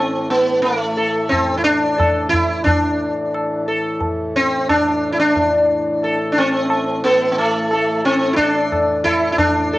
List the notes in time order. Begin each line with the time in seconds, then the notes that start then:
Already playing: A2 E3 C4
0.30 B3, tabla na
0.62 A3, tabla tin
0.97 A4
1.29 C4, tabla na, tabla ge
1.58 E4
1.64 D4
1.98 A4, tabla na, tabla ge
2.29 E4, tabla ge
2.64 D4, tabla tin, tabla ge
3.34 tabla na
3.68 A4
4.01 tabla tin, tabla ge
4.36 C4
4.69 D4, tabla na, tabla ge
5.12 E4
5.19 D4
5.36 tabla tin, tabla ge
6.03 A4, tabla tin
6.32 D4
6.38 C4 A4
6.70 tabla na
7.04 B3 A4
7.32 B3
7.37 A3 A4, tabla tin
7.71 A4, tabla na
8.05 C4 A4, tabla te
8.21 tabla te
8.33 D4 E4
8.38 A4, tabla ke
8.56 tabla te
8.72 tabla na, tabla ge
9.04 E4 A4, tabla ge
9.32 E4
9.38 A2 E3 D4, tabla tin, tabla ge
9.73 A4